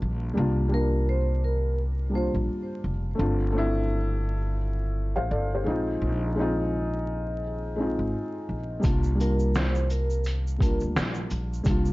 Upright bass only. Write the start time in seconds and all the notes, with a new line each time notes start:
0.02 A#1
0.37 C2
2.34 A#1
2.84 F1
3.19 G1
5.16 A1
5.31 G1
5.66 A#1
6.01 A#1
7.99 G#1
8.49 A#1
8.84 C2
10.81 D2
10.96 A#1
11.31 A#1
11.66 C2